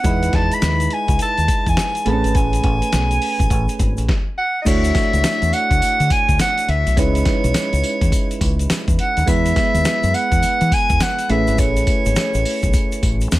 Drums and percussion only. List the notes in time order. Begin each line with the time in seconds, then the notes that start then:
0.04 kick, closed hi-hat, shaker
0.23 closed hi-hat, shaker
0.33 kick, snare, closed hi-hat
0.52 closed hi-hat, shaker
0.62 snare, closed hi-hat, shaker
0.80 closed hi-hat, shaker
0.90 closed hi-hat
1.08 kick, closed hi-hat, shaker
1.19 closed hi-hat, shaker
1.38 closed hi-hat, shaker
1.48 kick, closed hi-hat, shaker
1.66 kick, closed hi-hat, shaker
1.77 snare, closed hi-hat, shaker
1.95 closed hi-hat, shaker
2.06 closed hi-hat
2.24 closed hi-hat, shaker
2.35 kick, closed hi-hat, shaker
2.53 closed hi-hat, shaker
2.64 kick, closed hi-hat
2.82 closed hi-hat, shaker
2.92 snare, closed hi-hat, shaker
3.11 closed hi-hat, shaker
3.22 open hi-hat
3.40 kick, closed hi-hat, shaker
3.50 kick, closed hi-hat, shaker
3.69 closed hi-hat, shaker
3.79 kick, closed hi-hat, shaker
3.97 closed hi-hat, shaker
4.09 kick, snare
4.66 kick, closed hi-hat, crash, tambourine, shaker
4.84 closed hi-hat, shaker
4.95 kick, snare, closed hi-hat, tambourine
5.13 closed hi-hat, shaker
5.24 snare, closed hi-hat, tambourine, shaker
5.42 closed hi-hat, shaker
5.53 closed hi-hat, tambourine
5.71 kick, closed hi-hat, shaker
5.82 closed hi-hat, tambourine, shaker
6.00 closed hi-hat, shaker
6.10 kick, closed hi-hat, tambourine
6.29 kick, closed hi-hat, shaker
6.39 snare, closed hi-hat, tambourine, shaker
6.58 closed hi-hat, shaker
6.69 closed hi-hat
6.87 closed hi-hat, shaker
6.97 kick, closed hi-hat, tambourine, shaker
7.15 closed hi-hat, shaker
7.25 kick, snare, closed hi-hat, tambourine
7.44 closed hi-hat, shaker
7.54 snare, closed hi-hat, tambourine, shaker
7.73 closed hi-hat, shaker
7.84 closed hi-hat, tambourine
8.01 kick, closed hi-hat, shaker
8.12 kick, closed hi-hat, tambourine, shaker
8.31 closed hi-hat, shaker
8.41 kick, closed hi-hat, tambourine
8.59 closed hi-hat, shaker
8.70 snare, closed hi-hat, tambourine, shaker
8.88 kick, closed hi-hat, shaker
8.99 closed hi-hat
9.17 closed hi-hat, shaker
9.27 kick, closed hi-hat, tambourine, shaker
9.46 closed hi-hat, shaker
9.56 kick, snare, closed hi-hat, tambourine
9.75 closed hi-hat, shaker
9.85 snare, closed hi-hat, tambourine, shaker
10.03 closed hi-hat, shaker
10.14 closed hi-hat, tambourine
10.32 kick, closed hi-hat, shaker
10.43 closed hi-hat, tambourine, shaker
10.61 closed hi-hat, shaker
10.72 kick, closed hi-hat, tambourine
10.89 kick, closed hi-hat, shaker
11.00 snare, closed hi-hat, tambourine, shaker
11.19 closed hi-hat, shaker
11.30 closed hi-hat
11.47 closed hi-hat, shaker
11.58 kick, closed hi-hat, tambourine, shaker
11.77 closed hi-hat, shaker
11.87 kick, closed hi-hat, tambourine
12.06 closed hi-hat, shaker
12.16 snare, closed hi-hat, tambourine, shaker
12.34 closed hi-hat, shaker
12.45 open hi-hat, tambourine
12.63 kick, closed hi-hat, shaker
12.73 kick, closed hi-hat, tambourine, shaker
12.92 closed hi-hat, shaker
13.03 kick, closed hi-hat, tambourine
13.21 closed hi-hat, shaker
13.32 snare, closed hi-hat, tambourine, shaker